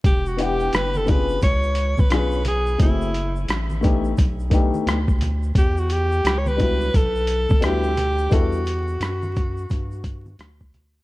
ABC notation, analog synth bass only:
X:1
M:4/4
L:1/16
Q:"Swing 16ths" 1/4=87
K:Edor
V:1 name="Analog synth bass" clef=bass
E,,,4 F,,,4 C,,3 B,,, B,,,4 | F,,,4 A,,,4 B,,,3 D,, D,,4 | E,,4 C,,4 B,,,3 D,, D,,4 | E,,4 F,,4 G,,4 D,,4 |]